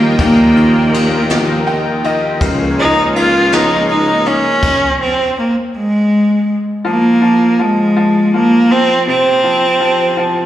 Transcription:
Already playing: D#2 D#3 F3 A#3 D#4 F4 A#4 D#5 G5
0.00 G4
0.19 D#2 A#2 F3 A#3, kick, ride
0.38 A#3
0.56 D#3 D#4, ride
0.75 A#3
0.93 D#3 D#4, ride
1.12 G4
1.30 D#3 F3, snare, ride
1.48 A#3
1.67 D#4 G5, ride
1.86 A#3
2.03 D#3 D#4 D#5, ride
2.22 G4
2.41 C#2 C#3 F3 F4 C#5 G#5, kick, ride
2.59 A#3
2.78 G#3 C#4 D#4, ride
2.96 A#3
3.15 A#3 C#4 F4, ride
3.33 G#4
3.51 F3 G#3 D#4, snare, ride
3.70 A#3
3.89 C#4 D#4, ride
4.07 A#3
4.26 A#3 C#4, ride
4.44 G#4
4.63 kick, crash
5.01 C4
5.39 A#3
5.76 G#3
6.85 F3 A#3
7.22 F3
7.59 F3 G#3
7.96 F3
8.34 F3 A#3
8.71 F3 C4
9.07 C3 C4
9.44 F3
9.80 F3
10.17 F3

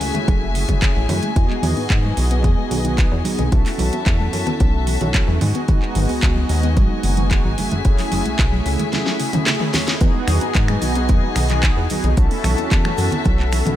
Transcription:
Already playing: A3 C#4 E4 F#4 G#4 E5 G#5
0.01 C#2 C#3, open hi-hat
0.14 G#3, closed hi-hat, low conga
0.28 F#1 C#3, kick, closed hi-hat, high conga
0.43 F#3
0.55 C#3, open hi-hat
0.68 F#1 G#3 A3 C#4 E4 G#4, kick, closed hi-hat, high conga, low conga
0.82 C#3, kick, clap, closed hi-hat
0.96 A1 E3
1.09 F#2 C#3 A3 C#4 E4 G#4, open hi-hat, high conga, low conga
1.23 G#3, closed hi-hat
1.35 E2 D#3 E3 B3 D#4 F#4 G#4 D#5, kick, closed hi-hat
1.50 G#3, clap
1.63 E2 D#3, open hi-hat, high conga
1.77 G#2 B3, open hi-hat
1.90 G#2 D#3, kick, clap, closed hi-hat
2.03 G#3, high conga
2.17 B1 D#3, open hi-hat
2.31 B3, closed hi-hat
2.43 E2 D#3, kick, closed hi-hat, high conga
2.58 G#3
2.71 B1 D#3, open hi-hat
2.84 D#3 B3 D#4 F#4 G#4, closed hi-hat, high conga
2.98 D#3, kick, clap, closed hi-hat
3.12 E2 E3
3.25 B1 D#3 B3 D#4 F#4 G#4, open hi-hat, high conga
3.39 B1 B3, closed hi-hat, low conga
3.51 B1 E3 C#4 E4 F#4 A4 E5 A5, kick, closed hi-hat
3.66 A3, clap, open hi-hat
3.78 B1 E3, open hi-hat, high conga
3.93 E2 B3, closed hi-hat
4.06 E2 E3, kick, clap, closed hi-hat
4.20 A3, high conga
4.33 F#2 E3, open hi-hat
4.47 B3, closed hi-hat, low conga
4.60 B1 E3, kick, closed hi-hat, high conga
4.74 A3
4.87 E3, open hi-hat
5.01 B1 E3 C#4 E4 F#4 A4, closed hi-hat, high conga, low conga
5.14 E3, kick, clap, closed hi-hat
5.28 E2 F#3
5.41 G#2 D#3 G#3 B3 D#4 F#4 D#5 G#5, open hi-hat, high conga, low conga
5.55 B3, closed hi-hat
5.68 G#1 D#3 G#3 B3 D#4 F#4, kick, closed hi-hat
5.82 G#3, clap
5.95 G#1 D#3, open hi-hat, high conga
6.09 C#2 B3, open hi-hat
6.22 C#2 D#3, kick, clap, closed hi-hat
6.36 G#3, high conga
6.49 D#2 D#3, open hi-hat
6.63 B3, closed hi-hat
6.77 G#1 D#3, kick, closed hi-hat, high conga
6.91 G#3
7.03 F#1 D#3, open hi-hat
7.17 D#3 G#3 B3 D#4 F#4, closed hi-hat, high conga
7.31 D#3, kick, clap, closed hi-hat
7.44 G#1 F#3
7.57 F#1 C#3 A3 C#4 E4 G#4 E5, open hi-hat, high conga
7.71 F#1 G#3, closed hi-hat, low conga
7.84 F#1 C#3 A3 C#4 E4 G#4, kick, closed hi-hat
7.99 F#3, clap, open hi-hat
8.12 F#1 C#3, open hi-hat, high conga
8.25 B1 G#3, closed hi-hat
8.39 B1 C#3, kick, clap, closed hi-hat
8.52 F#3, high conga
8.66 C#2 C#3, open hi-hat
8.79 G#3, closed hi-hat, low conga
8.93 C#3, snare, closed hi-hat, high conga
9.06 F#3, snare
9.20 C#3, open hi-hat
9.33 C#3 A3 C#4 E4 G#4, closed hi-hat, mid tom, high conga, low conga
9.46 C#3, snare, clap, closed hi-hat
9.60 A3, mid tom
9.74 A3 C#4 E4 G#4, snare, open hi-hat, high conga, low conga
9.87 A3, snare, closed hi-hat
10.00 E2 D#3 E3 B3 D#4 F#4 G#4 D#5 G#5, kick, closed hi-hat, cabasa
10.15 G#3
10.28 E2 D#3, finger snap, open hi-hat, high conga, cabasa
10.41 G#2 B3, closed hi-hat, cabasa
10.55 G#2 D#3, kick, clap, closed hi-hat, cabasa
10.68 G#3, finger snap, high conga, cabasa
10.82 B1 D#3, open hi-hat, cabasa
10.95 B3, closed hi-hat, cabasa
11.09 E2 D#3, kick, closed hi-hat, high conga, cabasa
11.24 G#3
11.36 B1 D#3, finger snap, open hi-hat, cabasa
11.49 D#3 B3 D#4 F#4 G#4, clap, closed hi-hat, high conga, cabasa
11.63 D#3, kick, clap, closed hi-hat, cabasa
11.77 E2 E3
11.90 B1 D#3 B3 D#4 F#4 G#4, open hi-hat, high conga, cabasa
12.04 B1 B3, closed hi-hat, low conga, cabasa
12.16 B1 E3 C#4 E4 F#4 A4 E5 A5, kick, closed hi-hat, cabasa
12.31 A3, open hi-hat
12.44 B1 E3, finger snap, open hi-hat, high conga, cabasa
12.58 E2 B3, closed hi-hat, cabasa
12.71 E2 E3, kick, clap, closed hi-hat, cabasa
12.84 A3, finger snap, high conga, cabasa
12.98 F#2 E3, open hi-hat, cabasa
13.11 B3, closed hi-hat, low conga, cabasa
13.24 B1 E3, kick, closed hi-hat, high conga, cabasa
13.39 A3, clap
13.52 E3, finger snap, open hi-hat, cabasa
13.66 B1 E3 C#4 E4 F#4 A4, closed hi-hat, high conga, low conga, cabasa

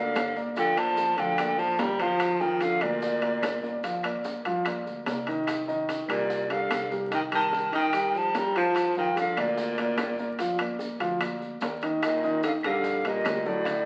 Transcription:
Already playing: D2 D3 A#3 A#4 D5 F5
0.16 G1, high bongo, low bongo, high timbale, low timbale, claves, maracas
0.36 A#3 A#4 D5, high bongo, maracas
0.56 D3 F3 F4 F5 G5, high bongo, high timbale, maracas
0.77 F3 A#3 A#4 D5 A5, high timbale, claves, maracas
0.97 high bongo, low timbale, maracas
1.18 D2 D3 F3 F4 F5 G5, high bongo, high timbale, maracas
1.38 A#3 A#4 D5, high bongo, high timbale, claves, maracas
1.58 A1 F3 A5, high bongo, maracas
1.79 G1 G3 A#3 A#4 D5 A#5, high bongo, low bongo, high timbale, low timbale, maracas
2.00 F3 F4 F5 A5, high bongo, high timbale, maracas
2.20 high bongo, high timbale, claves, maracas
2.41 D#3 F3 F4 F5 G5, maracas
2.61 D3 F5, high bongo, high timbale, low timbale, maracas
2.81 D2 A#2 A#3 A#4 D5, high bongo, high timbale, claves, maracas
3.02 high bongo, maracas
3.22 A#3 A#4 D5, high bongo, high timbale, maracas
3.42 G1, high bongo, low bongo, high timbale, low timbale, claves, maracas
3.63 A#3 A#4 D5, high bongo, maracas
3.83 F3 F4 F5, high bongo, high timbale, maracas
4.03 A#3 A#4 D5, high timbale, claves, maracas
4.24 high bongo, low timbale, maracas
4.45 G2 F3 F4 F5, high bongo, high timbale, maracas
4.65 A#3 A#4 D5, high bongo, high timbale, claves, maracas
4.86 D2, high bongo, maracas
5.06 C2 A#3 A#4 D5, high bongo, low bongo, high timbale, low timbale, maracas
5.27 D#3 D#4 D#5, high bongo, high timbale, maracas
5.47 high bongo, high timbale, claves, maracas
5.68 D#3 D#4 D#5, maracas
5.89 high bongo, high timbale, low timbale, maracas
6.08 C2 A#2 G3 G4 A#4 D5, high bongo, high timbale, claves, maracas
6.30 high bongo, maracas
6.50 D3 G3 G4 A#4 F5, high bongo, high timbale, maracas
6.71 C2, high bongo, low bongo, high timbale, low timbale, claves, maracas
6.90 G3 G4 A#4, high bongo, maracas
7.11 D#3 D#4 D#5 G5, high bongo, high timbale, maracas
7.31 D#3 G3 G4 A#4, high timbale, claves, maracas
7.35 A5
7.53 high bongo, low timbale, maracas
7.72 G2 D#3 D#4 D#5, high bongo, high timbale, maracas
7.77 G5
7.93 G3 G4 A#4, high bongo, high timbale, claves, maracas
8.14 F3 A5, high bongo, maracas
8.34 G2 G3 G4 A#4 A#5, high bongo, low bongo, high timbale, low timbale, maracas
8.56 F3 F4 F5 A5, high timbale, maracas
8.75 high bongo, high timbale, claves, maracas
8.97 D#3 F3 F4 F5 G5, maracas
9.16 D3 F5, high bongo, high timbale, low timbale, maracas
9.37 D2 A#2 A#3 A#4 D5, high bongo, high timbale, claves, maracas
9.58 high bongo, maracas
9.78 A#3 A#4 D5, high bongo, high timbale, maracas
9.98 G1, high bongo, low bongo, high timbale, low timbale, claves, maracas
10.19 A#3 A#4 D5, high bongo, maracas
10.39 F3 F4 F5, high bongo, high timbale, maracas
10.59 A#3 A#4 D5, high timbale, claves, maracas
10.79 high bongo, low timbale, maracas
11.00 D2 F3 F4 F5, high bongo, high timbale, maracas
11.21 A#3 A#4 D5, high bongo, high timbale, claves, maracas
11.41 high bongo, maracas
11.61 D#2 A#3 A#4 D5, high bongo, low bongo, high timbale, low timbale, maracas
11.81 D#3 D#4 D#5, high bongo, high timbale, maracas
12.02 A#2 D#5, high bongo, high timbale, claves, maracas
12.23 D#3 D#4 D#5, maracas
12.43 D3 F5, high bongo, high timbale, low timbale, maracas
12.63 A#1 D3 G3 G4 A#4 F5, high bongo, high timbale, claves, maracas
12.84 high bongo, maracas
13.05 A#2 G3 G4 A#4 D#5, high bongo, high timbale, maracas
13.25 D2, high bongo, low bongo, high timbale, low timbale, claves, maracas
13.45 A2 F#3 F#4 A4 D5, high bongo, maracas
13.65 D3 D4 D5, high bongo, high timbale, maracas

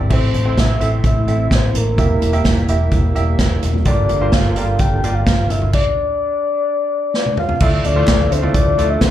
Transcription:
Already playing: G2 C4 E4 G4 A4 A#4 D5 E5
0.10 A1 A2 E3 A3 C4 E4 A4 C5 E5, kick, crash
0.34 A1, closed hi-hat, floor tom
0.45 C4 E4 A4 C5
0.57 A1 E5, kick, snare, closed hi-hat
0.80 A1 C4 E4 A4 E5, closed hi-hat
1.04 A1 E5, kick, closed hi-hat
1.27 A1 C4 E4 A4 E5, closed hi-hat
1.51 A1, kick, snare, closed hi-hat
1.55 C5
1.74 A1 A#4, closed hi-hat, floor tom
1.98 E1 E3 G3 A#3 E4 G4 E5, kick, closed hi-hat
2.22 E1, closed hi-hat, floor tom
2.33 A#3 E4 G4 E5, closed hi-hat
2.45 E1, kick, snare, closed hi-hat
2.57 closed hi-hat
2.68 E1 A#3 E4 G4 E5, closed hi-hat
2.91 E1, kick, closed hi-hat
3.15 E1 A#3 E4 G4 E5, closed hi-hat
3.39 E1, kick, snare, closed hi-hat
3.62 E1, closed hi-hat, floor tom
3.74 floor tom
3.85 G1 G2 D3 A#3 D4 F4 G4 A4 A#4 D5, kick, closed hi-hat
4.09 G1, closed hi-hat, floor tom
4.21 A#3 F4 G4 C5
4.32 G1 F5, kick, snare, closed hi-hat
4.44 closed hi-hat
4.56 G1 A#3 F4 G4 D5, closed hi-hat
4.79 G1 G5, kick, closed hi-hat
5.04 G1 A#3 F4 G4 D5, closed hi-hat
5.15 F5
5.26 G1, kick, snare, closed hi-hat
5.50 G1 E5, closed hi-hat, floor tom
5.62 floor tom
5.73 D5, kick, crash
7.14 snare
7.26 high tom
7.37 F5, mid tom
7.49 floor tom
7.60 D2 A2 D3 F3 A3 D4 E4 F4 A4 D5 E5, kick, crash
7.84 D2 D5, closed hi-hat, floor tom
7.96 A3 E4 F4 C5
8.07 D2, kick, snare, clap, closed hi-hat
8.31 D2 C5, closed hi-hat
8.43 A3 E4 F4 D5, floor tom
8.54 D2 D5, kick, closed hi-hat
8.78 D2 A3 E4 F4 D5, closed hi-hat
8.90 E5
9.01 D2 C5, kick, snare, clap, closed hi-hat

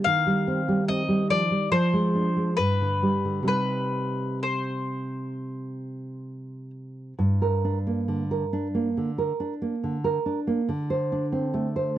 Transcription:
0.04 D#3 F5
0.27 G3
0.47 C4
0.68 G3
0.88 C4 D#5
1.08 G3
1.30 F3 D5
1.51 G3
1.71 F3 C5
1.93 G#3
2.15 D4
2.36 G#3
2.57 G2 B4
2.81 D3
3.03 G3
3.25 D3
3.43 C3 G3 D#4
3.48 B4
4.43 C5
7.19 G2
7.42 A#4
7.65 D4
7.87 A#3
8.08 D3
8.31 A#4
8.53 D4
8.74 A#3
8.97 D3
9.18 A#4
9.40 D4
9.62 A#3
9.84 D3
10.04 A#4
10.26 D4
10.47 A#3
10.69 D3
10.90 C5
11.12 D4
11.32 C4
11.54 A3
11.76 C5

